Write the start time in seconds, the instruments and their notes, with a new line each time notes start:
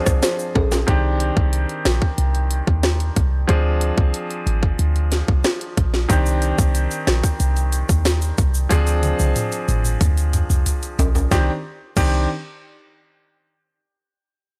Already playing: grand piano F3 C4 D4 G#4, analog synth pad G#4 D5 F5 C6
0.06 808-style bass C2, kick, cross-stick, shaker
0.23 marimba C5, cross-stick, snare, closed hi-hat, shaker
0.39 shaker
0.55 808-style bass A#1, marimba G#4, kick, high timbale
0.72 snare, high timbale, shaker
0.87 808-style bass C2, grand piano D#3 C4 D4 G4, kick, closed hi-hat
1.20 closed hi-hat
1.37 808-style bass C2, kick
1.53 closed hi-hat
1.69 closed hi-hat
1.85 808-style bass A#1, cross-stick, snare, closed hi-hat
2.02 kick
2.18 808-style bass C2, closed hi-hat
2.35 closed hi-hat
2.51 closed hi-hat
2.67 808-style bass D#2, kick
2.83 cross-stick, snare, closed hi-hat
3.00 closed hi-hat
3.16 808-style bass C2, kick, closed hi-hat
3.48 808-style bass D2, grand piano F3 C4 D4 G#4, kick, closed hi-hat
3.81 closed hi-hat
3.98 808-style bass C2, kick
4.14 closed hi-hat
4.30 closed hi-hat
4.47 808-style bass G#1, closed hi-hat
4.63 kick
4.79 808-style bass D2, closed hi-hat
4.96 closed hi-hat
5.12 snare, closed hi-hat
5.28 808-style bass C2, kick
5.44 cross-stick, snare, closed hi-hat
5.61 closed hi-hat
5.77 808-style bass A#1, kick, closed hi-hat
5.94 snare
6.08 808-style bass C2, grand piano D#3 C4 D4 G4, kick, closed hi-hat, shaker
6.26 shaker
6.42 closed hi-hat, shaker
6.58 808-style bass C2, kick, shaker
6.75 closed hi-hat, shaker
6.91 closed hi-hat, shaker
7.07 808-style bass A#1, cross-stick, snare, closed hi-hat
7.24 kick, shaker
7.40 808-style bass C2, closed hi-hat, shaker
7.56 closed hi-hat, shaker
7.72 closed hi-hat, shaker
7.89 808-style bass D#2, kick, shaker
8.05 cross-stick, snare, closed hi-hat, shaker
8.22 closed hi-hat, shaker
8.38 808-style bass C2, kick, closed hi-hat, shaker
8.54 shaker
8.69 808-style bass D2, grand piano F3 C4 D4 G#4, kick, closed hi-hat, high tom, shaker
8.87 closed hi-hat, shaker
9.03 closed hi-hat, high tom, shaker
9.19 808-style bass C2, high tom, shaker
9.36 closed hi-hat, mid tom, shaker
9.52 closed hi-hat, shaker
9.68 808-style bass G#1, closed hi-hat, mid tom, shaker
9.85 mid tom, shaker
10.01 808-style bass D2, kick, closed hi-hat, mid tom, shaker
10.17 closed hi-hat, shaker
10.33 closed hi-hat, mid tom, shaker
10.50 808-style bass C2, mid tom, shaker
10.66 closed hi-hat, floor tom, shaker
10.83 closed hi-hat, shaker
10.99 808-style bass A#1, closed hi-hat, floor tom, high timbale, shaker
11.15 floor tom, high timbale, shaker
11.31 808-style bass C2, grand piano D#3 C4 D4 G4, kick, snare, shaker
11.97 808-style bass C2, grand piano D#3 C4 D4 G4, kick, crash, shaker